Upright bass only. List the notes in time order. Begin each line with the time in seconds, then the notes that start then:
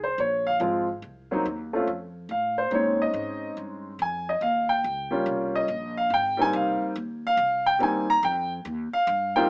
Already playing: C2
0.18 A#1
0.60 G#1
1.02 C2
1.46 D#2
1.87 F2
2.29 A2
2.71 A#2
3.14 G#2
3.57 G2
3.99 F2
4.41 D#2
4.84 C#2
5.26 C2
5.68 A#1
6.10 G#1
6.53 C2
6.82 muted upright bass stroke
6.95 D#2
7.37 C2
7.80 D#2
8.23 F2
8.65 D#2
8.94 muted upright bass stroke
9.07 G2